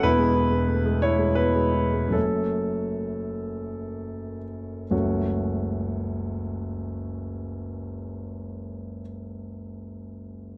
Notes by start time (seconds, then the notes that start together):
0.03 E1 E2 E4 B4
0.19 G#3
0.34 E4
0.51 G#3
0.68 A3
0.85 G#3
1.02 E4 C#5
1.19 G#3
1.35 B2 E4 B4
1.55 G#3
1.74 E4
1.93 G#3
2.08 F#2 F#3 A3
2.12 F#1 C#4 A4
4.91 F#1 C#2 F#3 A3 C#4 F#4